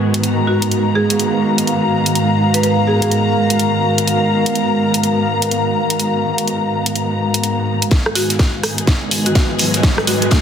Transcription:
Already playing: G#2 D#3 G#3 B3 F#4 G#4 B4 D#5
0.14 closed hi-hat
0.23 A#5, closed hi-hat
0.47 F#4
0.55 F5
0.62 closed hi-hat
0.71 closed hi-hat
0.95 G#4
1.10 G#4, closed hi-hat
1.20 closed hi-hat
1.58 closed hi-hat
1.67 closed hi-hat
1.98 A#4
2.06 closed hi-hat
2.15 closed hi-hat
2.54 B4, closed hi-hat
2.63 B4, closed hi-hat
2.87 G#4
3.02 G#4, closed hi-hat
3.11 closed hi-hat
3.50 closed hi-hat
3.59 closed hi-hat
3.98 closed hi-hat
4.07 closed hi-hat
4.46 closed hi-hat
4.55 closed hi-hat
4.94 closed hi-hat
5.03 closed hi-hat
5.42 closed hi-hat
5.51 closed hi-hat
5.90 closed hi-hat
6.00 closed hi-hat
6.38 closed hi-hat
6.47 closed hi-hat
6.86 closed hi-hat
6.96 closed hi-hat
7.34 closed hi-hat
7.43 closed hi-hat
7.82 closed hi-hat
7.91 G#2 D#3 B3 G#4, kick, snare, closed hi-hat, riser
8.06 cross-stick
8.15 F#4, snare, closed hi-hat, open hi-hat
8.30 snare, closed hi-hat
8.39 kick, snare, closed hi-hat
8.52 D#5
8.63 cross-stick, closed hi-hat, open hi-hat
8.78 closed hi-hat
8.87 B4, kick, snare, closed hi-hat
9.11 closed hi-hat, open hi-hat
9.26 F#4, closed hi-hat
9.35 F#4, kick, snare, closed hi-hat
9.58 closed hi-hat, open hi-hat
9.74 snare, closed hi-hat
9.83 kick, snare, closed hi-hat
9.98 cross-stick, snare
10.07 F#4, snare, closed hi-hat, open hi-hat
10.22 F#4, closed hi-hat
10.31 kick, snare, closed hi-hat

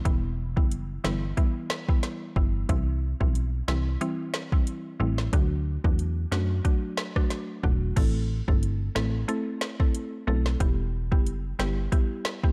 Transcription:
0.05 E1 E3 G3 B3 E4, kick, closed hi-hat
0.56 F#1 E3 G3 B3 E4, kick
0.71 closed hi-hat
1.04 G1 E3 G3 B3 E4, snare
1.37 E3 G3 B3 E4, kick, closed hi-hat
1.70 snare
1.89 E3 G3 B3 E4, kick
2.03 snare, closed hi-hat
2.36 G1 E3 G3 B3 E4, kick
2.69 C2 E3 G3 C4 E4, kick, closed hi-hat
3.20 B1 E3 G3 C4 E4, kick
3.35 closed hi-hat
3.68 C2 E3 G3 C4 E4, snare
4.01 E3 G3 C4 E4, closed hi-hat
4.34 snare
4.52 E3 G3 C4 E4, kick
4.67 closed hi-hat
5.00 A1 E3 G3 C4 E4
5.18 snare
5.33 D2 F#3 A3 D4 F#4, kick, closed hi-hat
5.84 E2 F#3 A3 D4 F#4, kick
5.99 closed hi-hat
6.32 F#2 F#3 A3 D4 F#4, snare
6.64 F#3 A3 D4 F#4, kick, closed hi-hat
6.97 snare
7.16 F#3 A3 D4 F#4, kick, cross-stick
7.30 snare, closed hi-hat
7.63 E1 F#3 A3 D4 F#4, kick
7.96 A1 A3 C4 E4 A4, kick, closed hi-hat, crash
8.48 G1 A3 C4 E4 A4, kick
8.63 closed hi-hat
8.95 A1 A3 C4 E4 A4, snare
9.28 A3 C4 E4 A4, closed hi-hat
9.61 snare
9.80 A3 C4 E4 A4, kick
9.95 closed hi-hat
10.27 B1 A3 C4 E4 A4
10.46 snare
10.60 E1 G3 B3 E4 G4, kick, closed hi-hat
11.11 F#1 G3 B3 E4 G4, kick
11.27 closed hi-hat
11.59 G1 G3 B3 E4 G4, snare
11.92 G3 B3 E4 G4, kick, closed hi-hat
12.25 snare
12.43 G3 B3 E4 G4, kick

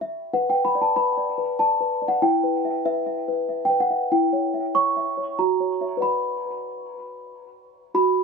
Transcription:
Already playing: F#4 C#5 A#5
0.01 E5
0.33 B4 F#5
0.50 G5
0.54 B4
0.65 B5
0.75 D5
0.82 A5
0.96 B4 B5
1.18 D5
1.38 B4
1.59 D5 A5
1.81 B4
2.02 D5
2.08 F#5
2.22 E4 G5
2.43 B4
2.65 E5
2.85 B4 E5
3.07 E5
3.28 B4
3.49 E5
3.65 G5
3.70 B4
3.80 F#5
3.90 E5
4.12 E4 G5
4.33 C#5
4.54 E5
4.75 C#5 C#6
4.97 E5
5.17 C#5
5.39 F#4 A#5
5.60 C#5
5.81 C#5 E5
5.97 B4 D5 F#5
6.02 B5
7.94 F#4 B5

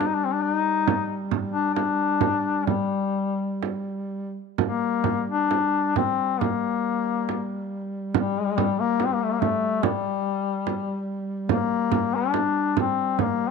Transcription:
Already playing: G3
0.01 frame drum
0.07 D#4
0.14 D4
0.25 C4
0.33 D4
0.42 D#4
0.88 frame drum
1.31 frame drum
1.52 D4
1.74 D4, frame drum
2.21 frame drum
2.66 G3, frame drum
3.63 frame drum
4.58 G3 A#3, frame drum
5.04 frame drum
5.30 D4
5.51 frame drum
5.96 C4, frame drum
6.40 A#3, frame drum
7.29 frame drum
8.14 G3, frame drum
8.58 frame drum
8.80 A#3
9.00 frame drum
9.07 C4
9.15 A#3
9.23 A3
9.32 A#3
9.40 A3, frame drum
9.83 G3, frame drum
10.67 frame drum
11.49 A#3, frame drum
11.92 frame drum
12.16 D4
12.34 frame drum
12.77 C4, frame drum
13.19 A#3, frame drum

